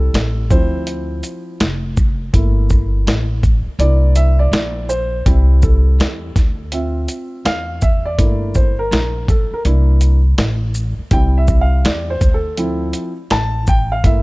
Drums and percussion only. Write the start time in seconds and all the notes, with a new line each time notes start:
0.14 snare, closed hi-hat
0.51 kick, closed hi-hat, shaker
0.87 closed hi-hat
1.23 closed hi-hat, shaker
1.60 snare, closed hi-hat
1.97 kick, shaker
2.34 kick, closed hi-hat
2.70 kick, shaker
3.07 snare, closed hi-hat
3.43 kick, closed hi-hat, shaker
3.80 closed hi-hat
4.16 closed hi-hat, shaker
4.53 snare, closed hi-hat
4.89 shaker
5.26 kick, closed hi-hat
5.62 kick, shaker
6.00 snare, closed hi-hat
6.36 kick, snare, closed hi-hat, shaker
6.72 closed hi-hat
7.08 closed hi-hat, shaker
7.46 snare, closed hi-hat
7.82 kick, shaker
8.19 kick, closed hi-hat
8.55 kick, shaker
8.92 snare, closed hi-hat
9.28 kick, closed hi-hat, shaker
9.65 closed hi-hat
10.01 closed hi-hat, shaker
10.38 snare, closed hi-hat
10.74 shaker
11.11 kick, closed hi-hat
11.48 kick, shaker
11.85 snare, closed hi-hat
12.21 kick, closed hi-hat, shaker
12.57 closed hi-hat
12.93 closed hi-hat, shaker
13.30 snare, closed hi-hat
13.67 kick, shaker
14.04 kick, closed hi-hat